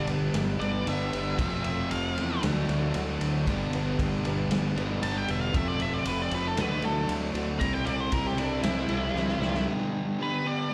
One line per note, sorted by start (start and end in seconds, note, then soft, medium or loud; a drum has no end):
0.00 0.58 G2 loud
0.00 0.59 D3 medium
0.00 0.59 G3 medium
0.00 0.59 B3 medium
0.00 0.58 D4 medium
0.07 0.33 G1 medium
0.07 0.84 D3 medium
0.07 0.85 G3 medium
0.07 0.85 B3 medium
0.07 0.84 D4 medium
0.07 0.35 G4 medium
0.07 0.34 B4 medium
0.07 ride medium
0.11 0.84 G2 medium
0.11 0.35 D4 soft
0.34 0.59 G1 medium
0.34 0.60 G3 loud
0.34 0.61 D4 medium
0.34 0.61 G4 loud
0.34 0.60 B4 loud
0.34 snare loud
0.34 ride loud
0.59 0.85 G1 medium
0.59 0.85 G2 medium
0.59 0.86 D3 medium
0.59 0.85 G3 medium
0.59 0.85 B3 medium
0.59 0.84 D4 medium
0.59 0.87 B4 medium
0.59 0.85 D5 loud
0.59 ride medium
0.64 0.87 D4 soft
0.86 1.12 G1 loud
0.86 1.36 G2 medium
0.86 1.37 D3 medium
0.86 1.12 G3 medium
0.86 1.37 G3 medium
0.86 1.38 B3 medium
0.86 1.13 D4 medium
0.86 1.38 D4 medium
0.86 1.13 G4 medium
0.86 1.11 B4 medium
0.86 1.63 E5 medium
0.86 ride medium
1.12 1.37 G1 medium
1.12 1.39 D4 soft
1.12 1.39 G4 soft
1.12 1.38 B4 medium
1.12 ride medium
1.37 1.63 F1 medium
1.37 2.40 F2 medium
1.37 2.41 C3 medium
1.37 1.64 F3 medium
1.37 2.41 F3 medium
1.37 1.65 A3 medium
1.37 2.42 A3 medium
1.37 1.65 C4 medium
1.37 2.42 C4 medium
1.37 1.65 F4 medium
1.37 1.64 A4 medium
1.37 kick loud
1.37 ride loud
1.64 1.90 F1 medium
1.64 1.90 C4 soft
1.64 1.91 F4 medium
1.64 1.91 A4 medium
1.64 1.90 E5 medium
1.64 ride medium
1.90 2.16 F1 medium
1.90 2.16 A3 soft
1.90 2.17 C4 medium
1.90 2.17 F4 medium
1.90 2.15 A4 medium
1.90 2.41 F5 medium
1.90 ride loud
2.15 2.42 E2 medium
2.15 2.42 F2 medium
2.15 2.41 C3 medium
2.15 2.41 F3 medium
2.15 2.41 A3 medium
2.15 2.40 C4 medium
2.15 2.43 C4 soft
2.15 2.43 F4 soft
2.15 2.42 A4 soft
2.15 ride medium
2.42 2.68 D2 medium
2.42 3.44 D3 medium
2.42 2.69 D3 medium
2.42 3.45 F#3 loud
2.42 2.69 A3 medium
2.42 3.46 A3 loud
2.42 2.69 D4 medium
2.42 2.70 F#4 medium
2.42 snare loud
2.42 ride loud
2.46 3.46 D4 loud
2.46 2.69 A4 medium
2.69 2.94 D2 medium
2.69 2.96 F#4 medium
2.69 2.95 A4 medium
2.69 ride medium
2.73 2.95 D4 medium
2.94 3.20 D2 loud
2.94 3.20 A3 medium
2.94 3.21 D4 medium
2.94 3.22 F#4 medium
2.94 3.21 A4 medium
2.94 ride medium
3.20 3.46 D2 medium
3.20 3.46 D3 medium
3.20 3.46 F#3 medium
3.20 3.45 A3 medium
3.20 3.44 D4 medium
3.20 3.47 A4 medium
3.20 ride medium
3.24 3.46 D4 soft
3.24 3.48 F#4 soft
3.46 3.72 G1 loud
3.46 4.74 G2 medium
3.46 4.75 D3 medium
3.46 3.72 G3 medium
3.46 4.75 G3 medium
3.46 4.76 B3 loud
3.46 3.73 D4 medium
3.46 4.75 D4 loud
3.46 3.73 G4 loud
3.46 3.73 B4 medium
3.46 kick medium
3.46 ride medium
3.72 3.97 G1 medium
3.72 3.99 G4 medium
3.72 3.99 B4 medium
3.72 ride medium
3.77 4.00 D4 medium
3.99 4.23 G1 loud
3.99 4.25 G3 medium
3.99 4.26 D4 medium
3.99 4.26 G4 medium
3.99 kick medium
3.99 ride medium
4.03 4.25 B4 medium
4.24 4.48 G1 medium
4.24 5.00 G2 medium
4.24 5.01 D3 medium
4.24 5.01 G3 medium
4.24 5.01 B3 medium
4.24 5.00 D4 medium
4.24 4.52 G4 medium
4.24 4.51 B4 medium
4.24 ride medium
4.29 4.52 D4 soft
4.49 4.74 G1 loud
4.49 4.77 G3 medium
4.49 snare loud
4.49 ride loud
4.53 4.77 D4 medium
4.53 4.78 G4 medium
4.53 4.76 B4 loud
4.75 5.00 G1 loud
4.75 5.02 G3 medium
4.75 5.01 B3 medium
4.75 5.00 D4 medium
4.75 5.03 B4 medium
4.75 ride medium
4.79 5.01 G2 medium
4.79 5.02 D3 medium
4.79 5.02 D4 medium
4.79 5.03 G4 medium
5.02 5.27 G1 medium
5.02 5.52 G2 medium
5.02 5.53 D3 medium
5.02 5.28 G3 medium
5.02 5.53 G3 medium
5.02 5.53 B3 medium
5.02 5.29 D4 medium
5.02 5.54 D4 medium
5.02 5.29 G4 medium
5.02 5.28 B4 medium
5.02 5.15 A5 medium
5.02 ride medium
5.18 5.31 G5 medium
5.28 5.53 E1 medium
5.28 5.55 G4 soft
5.28 5.55 B4 medium
5.28 5.41 E5 medium
5.28 ride medium
5.33 5.54 D4 soft
5.41 5.56 F5 medium
5.53 5.79 F1 medium
5.53 6.56 F2 medium
5.53 6.56 C3 medium
5.53 5.79 F3 medium
5.53 6.57 F3 medium
5.53 5.80 A3 medium
5.53 6.59 A3 loud
5.53 5.80 C4 medium
5.53 5.81 F4 medium
5.53 5.79 A4 medium
5.53 5.68 E5 medium
5.53 kick loud
5.53 ride medium
5.58 6.58 C4 loud
5.68 5.82 D5 loud
5.80 6.05 F1 medium
5.80 6.04 C4 soft
5.80 6.06 F4 medium
5.80 6.06 A4 medium
5.80 5.93 E5 medium
5.80 ride medium
5.94 6.07 D5 medium
6.05 6.31 F1 medium
6.05 6.31 A3 medium
6.05 6.31 C4 medium
6.05 6.32 F4 medium
6.05 6.30 A4 medium
6.05 6.22 B4 medium
6.05 ride loud
6.22 6.33 D5 medium
6.30 6.60 F1 medium
6.30 6.57 F2 medium
6.30 6.55 C3 medium
6.30 6.56 F3 medium
6.30 6.57 A3 medium
6.30 6.55 C4 medium
6.30 6.58 F4 soft
6.30 6.57 A4 medium
6.30 ride medium
6.35 6.58 C4 soft
6.35 6.48 B4 medium
6.48 6.61 A4 medium
6.57 6.81 D2 loud
6.57 7.58 D3 loud
6.57 6.83 D3 medium
6.57 7.60 F#3 medium
6.57 6.83 A3 medium
6.57 7.60 A3 loud
6.57 6.84 D4 medium
6.57 7.61 D4 loud
6.57 6.83 F#4 medium
6.57 6.81 A4 medium
6.57 snare loud
6.57 ride loud
6.61 6.84 B4 medium
6.82 7.08 D2 loud
6.82 7.10 F#4 soft
6.82 7.08 A4 medium
6.82 7.09 A4 loud
6.82 ride medium
6.87 7.08 D4 soft
7.08 7.33 D2 medium
7.08 7.34 A3 medium
7.08 7.35 D4 medium
7.08 7.33 F#4 medium
7.08 7.31 A4 medium
7.08 ride medium
7.32 7.59 D2 medium
7.32 7.59 A3 medium
7.32 7.59 D4 medium
7.32 7.60 F#4 medium
7.32 7.59 A4 medium
7.32 ride medium
7.36 7.59 D3 medium
7.36 7.60 F#3 medium
7.36 7.61 D4 medium
7.59 7.86 C2 medium
7.59 8.88 C3 medium
7.59 7.86 C3 medium
7.59 7.86 E3 medium
7.59 8.88 G3 medium
7.59 7.87 G3 medium
7.59 7.87 C4 medium
7.59 8.89 C4 medium
7.59 7.86 E4 medium
7.59 7.86 A4 medium
7.59 7.73 A#5 loud
7.59 kick medium
7.59 ride medium
7.63 8.88 E4 medium
7.73 7.86 G5 loud
7.85 8.12 C2 medium
7.85 8.10 G3 medium
7.85 8.12 C4 medium
7.85 8.13 E4 medium
7.85 8.13 A4 medium
7.85 8.00 D5 medium
7.85 ride medium
8.00 8.13 C5 medium
8.12 8.36 C2 loud
8.12 8.38 G3 medium
8.12 8.39 C4 medium
8.12 8.38 E4 medium
8.12 8.38 A4 medium
8.12 8.27 A#4 medium
8.12 kick medium
8.12 ride loud
8.27 8.39 G4 medium
8.37 8.63 C2 loud
8.37 9.15 G3 medium
8.37 9.15 C4 medium
8.37 8.62 D4 medium
8.37 9.14 E4 medium
8.37 8.65 E4 soft
8.37 8.65 A4 medium
8.37 ride medium
8.41 9.13 C3 medium
8.41 8.65 G3 soft
8.41 8.66 C4 soft
8.63 8.88 C2 medium
8.63 8.91 C3 medium
8.63 8.90 E3 medium
8.63 8.91 G3 medium
8.63 9.64 E4 loud
8.63 8.90 E4 medium
8.63 snare loud
8.63 ride loud
8.67 8.90 C4 medium
8.67 8.88 A4 medium
8.88 9.14 C2 medium
8.88 9.14 C3 medium
8.88 9.15 G3 medium
8.88 9.15 G3 soft
8.88 9.14 C4 medium
8.88 9.16 C4 soft
8.88 9.14 E4 loud
8.88 9.16 E4 soft
8.88 9.16 A4 medium
8.88 ride medium
9.14 9.38 C2 medium
9.14 9.65 C3 medium
9.14 9.42 G3 medium
9.14 9.66 G3 medium
9.14 9.42 C4 medium
9.14 9.67 C4 medium
9.14 9.42 E4 medium
9.14 snare medium
9.19 9.68 E4 medium
9.19 9.40 A4 medium
9.28 snare medium
9.39 9.65 C2 loud
9.39 9.67 A4 medium
9.39 snare medium
9.43 9.69 G3 soft
9.43 9.69 C4 medium
9.43 9.68 E4 medium
9.54 snare medium
9.67 10.18 G2 medium
9.67 10.18 D3 medium
9.67 10.19 G3 loud
9.67 10.19 B3 loud
9.67 10.20 D4 loud
9.67 10.20 G4 loud
10.18 10.44 G2 medium
10.18 10.43 D3 medium
10.18 10.45 G3 medium
10.18 10.45 B3 medium
10.18 10.46 D4 medium
10.18 10.46 G4 medium
10.23 10.47 B4 medium
10.44 10.69 G2 medium
10.44 10.70 D3 medium
10.44 10.71 G3 medium
10.44 10.70 B3 loud
10.44 10.71 D4 loud
10.44 10.72 G4 medium
10.44 10.74 D5 loud
10.70 10.74 G2 loud
10.70 10.74 D3 loud